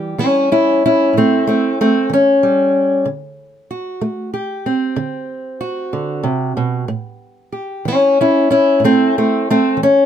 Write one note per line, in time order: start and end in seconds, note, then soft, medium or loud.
0.00 0.17 E3 soft
0.00 1.14 G3 soft
0.00 0.20 G4 soft
0.18 0.76 E3 medium
0.18 0.50 C#4 medium
0.18 0.51 E4 medium
0.52 0.83 C#4 medium
0.52 0.83 E4 medium
0.86 1.16 C#4 medium
0.86 1.80 E4 medium
1.13 1.71 A2 medium
1.17 1.46 A3 medium
1.17 1.48 C4 medium
1.47 1.79 A3 medium
1.47 1.79 C4 medium
1.81 2.11 A3 medium
1.81 2.12 C4 medium
2.10 2.67 E3 medium
2.10 3.07 C#4 medium
2.43 3.06 G3 medium
3.05 3.63 D3 medium
3.71 4.33 F#4 soft
4.01 4.59 A3 medium
4.34 5.60 G4 medium
4.66 6.86 C4 medium
4.96 5.54 D3 medium
5.61 6.85 F#4 medium
5.93 6.25 D3 medium
6.23 6.56 C3 medium
6.57 6.88 B2 medium
6.88 7.46 A2 medium
7.52 7.88 G4 soft
7.85 8.43 E3 medium
7.85 8.19 C#4 medium
7.85 8.19 E4 medium
8.21 8.49 C#4 medium
8.21 8.50 E4 medium
8.51 8.82 C#4 medium
8.51 9.47 E4 medium
8.80 9.38 A2 medium
8.84 9.15 A3 medium
8.84 9.15 C4 loud
9.18 9.48 A3 medium
9.18 9.48 C4 medium
9.50 9.80 A3 medium
9.50 9.80 C4 medium
9.77 10.06 E3 medium
9.83 10.06 C#4 medium